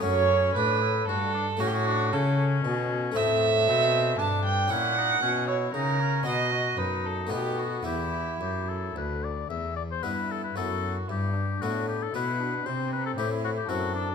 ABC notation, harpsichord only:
X:1
M:3/4
L:1/8
Q:1/4=115
K:F#phr
V:1 name="Harpsichord"
[A,CF]6 | [A,CF]6 | [K:Em] [A,CA]6 | [^CE]6 |
[B,F]4 [A,B,^D]2 | [B,E]6 | z2 [B,E]2 [B,E]2 | z2 [B,E]2 [B,E]2 |
z2 [CE]2 [CE]2 |]
V:2 name="Harpsichord" clef=bass
F,,2 A,,2 G,,2 | A,,2 C,2 B,,2 | [K:Em] A,,2 B,,2 G,,2 | ^A,,2 B,,2 ^C,2 |
B,,2 F,,2 B,,2 | E,,2 F,,2 D,,2 | E,,2 G,,2 F,,2 | G,,2 A,,2 B,,2 |
C,2 A,,2 F,,2 |]